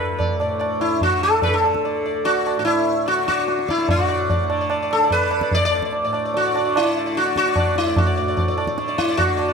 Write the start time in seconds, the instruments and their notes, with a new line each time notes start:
Already playing: tanpura D2 A2 D3, sitar B4
0.19 sitar D5, tabla tin, tabla ge
0.39 tanpura A2, sitar D5, tabla na
0.59 sitar D5, tabla na
0.81 sitar E4, tabla na
0.94 tanpura D3
1.01 sitar F#4, tabla tin, tabla ge
1.23 sitar A4
1.42 sitar B4, tabla tin, tabla ge
1.48 tanpura D3
1.54 sitar A4
1.64 tabla na
1.75 tabla ke
1.85 sitar D5, tabla tin
2.02 tanpura D2, sitar D5
2.25 sitar F#4 D5, tabla tin
2.46 sitar D5, tabla na
2.57 tanpura A2, sitar F#4
2.65 sitar E4, tabla na
3.06 sitar F#4 D5, tabla te
3.11 tanpura D3
3.19 tabla te
3.28 sitar F#4 D5, tabla ke
3.39 tabla te
3.48 tabla te
3.59 tabla te
3.64 tanpura D3
3.68 sitar E4 D5, tabla ke
3.78 tabla te
3.89 tanpura A2, sitar F#4, tabla tin, tabla ge
3.99 sitar D5
4.08 sitar D5
4.30 sitar D5, tabla tin, tabla ge
4.43 tanpura D3
4.50 sitar D5, tabla na
4.61 sitar D5
4.70 sitar D5, tabla na
4.82 sitar D5
4.91 sitar A4, tabla na
4.97 tanpura D3
5.04 sitar D5
5.10 sitar B4, tabla tin, tabla ge
5.23 sitar D5
5.31 sitar D5, tabla na
5.41 sitar D5, tabla ke
5.51 tanpura D2, sitar D5, tabla tin, tabla ge
5.65 sitar D5
5.71 sitar D5, tabla na
5.82 sitar D5, tabla ke
5.93 tabla tin
6.04 tanpura A2, sitar D5
6.13 sitar D5, tabla na
6.25 sitar D5
6.34 sitar F#4, tabla tin
6.45 sitar D5
6.55 tanpura D3, sitar D5, tabla na
6.65 sitar D5
6.76 sitar E4, tabla na
6.85 sitar D5
6.97 sitar D5
7.06 sitar D5
7.12 tanpura D3, tabla te
7.17 sitar F#4
7.25 sitar D5, tabla te
7.36 sitar F#4, tabla ke
7.46 sitar D5, tabla te
7.56 sitar D5, tabla na, tabla ge
7.66 tanpura D2
7.76 sitar E4, tabla te
7.87 sitar D5
7.96 sitar F#4, tabla tin, tabla ge
8.06 sitar D5
8.17 tanpura A2, sitar D5
8.28 sitar D5
8.37 sitar D5, tabla tin, tabla ge
8.48 sitar D5
8.57 sitar D5, tabla na
8.67 sitar D5, tabla ke
8.72 tanpura D3
8.78 sitar D5, tabla te
8.88 sitar D5, tabla te
8.98 sitar E4, tabla ke
9.09 sitar D5, tabla te
9.17 sitar F#4, tabla tin, tabla ge
9.24 tanpura D3, sitar D5
9.37 sitar D5, tabla na
9.48 sitar D5